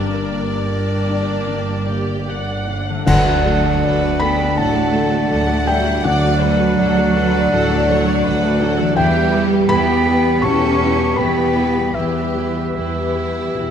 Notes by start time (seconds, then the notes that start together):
Already playing: G1 G2 A#3 D4 G4 A#4 D5
0.31 A#3
0.69 D4 D5
1.10 D4
1.47 D3
1.87 A#3 G4
2.26 D5 F#5
2.67 D4
2.89 D3
2.94 A3
2.98 D4
3.03 D2 D3 F#3 A4 B4 D5 F#5
3.07 D2 A3 D4 F#5, concert bass drum, crash
3.26 A3 F#4 D5
3.45 F#3 A3 A4 F#5
3.64 A3 F#4 D5
3.83 D2 F#3 A4 B4 D5 F#5
4.02 A3 F#4 D5
4.20 F#3 B3 D4 A4 F#5 G5 B5
4.39 A3 F#4 D5
4.57 D2 A2 F#3 A3 A4 F#5 A5
4.76 A3 F#4 D5
4.93 F#3 A3 A4 F#5
5.11 A3 F#4 D5
5.30 D2 F#3 A4 D5 F#5
5.48 A3 F#4 D5
5.66 F#3 G3 D4 A4 E5 F#5 G5
5.84 A3 F#4 D5
6.04 D2 F#3 A3 D4 A4 D5 F#5
6.22 A3 F#4 D5
6.40 F#3 A3 A4 B4 F#5
6.59 A3 F#4 D5
6.78 D2 F#3 A4 D5 F#5
6.97 A3 F#4 D5
7.15 F#3 D4 A4 B4 F#5
7.35 A3 F#4 D5
7.52 D2 A2 F#3 A4 F#5
7.71 A3 F#4 D5
7.89 F#3 A3 A4 C#5 F#5
8.07 A3 F#4 D5
8.25 D2 F#3 A4 B4 D5 F#5
8.42 A3 F#4 D5
8.60 F#3 D4 A4 F#5
8.77 E3 A3 F#4 D5
8.84 G3
8.89 G4
8.94 E2 E3 G3 E4 G4 B4 E5 G5
8.98 E2 B3 G4
9.14 G3 G4 B4
9.32 E3 G3 E4 G4
9.50 G3 G4 B4
9.69 E2 E3 B3 E4 G4 B4 G5 B5
9.89 G3 G4 B4
10.06 E3 E4 G4 B4
10.25 G3 G4 B4
10.42 E2 B2 E3 C#4 E4 G4 A4 A5 C#6
10.64 G3 G4 B4
10.81 E3 G3 E4 G4
11.00 G3 G4 B4
11.16 E2 B3 G4 B4 G5 B5
11.20 E3 E4
11.38 G3 G4 B4
11.56 E3 E4 G4
11.77 G3 G4 B4
11.95 E2 E3 B3 E4 G4 B4 E5
12.16 G3 G4 B4
12.35 E3 G3 E4 G4
12.56 G3 G4 B4
12.74 E2 E3 E4 G4 B4
12.97 G3 G4 B4
13.15 E3 E4 G4
13.36 G3 G4 B4
13.55 E2 B2 E3 E4 G4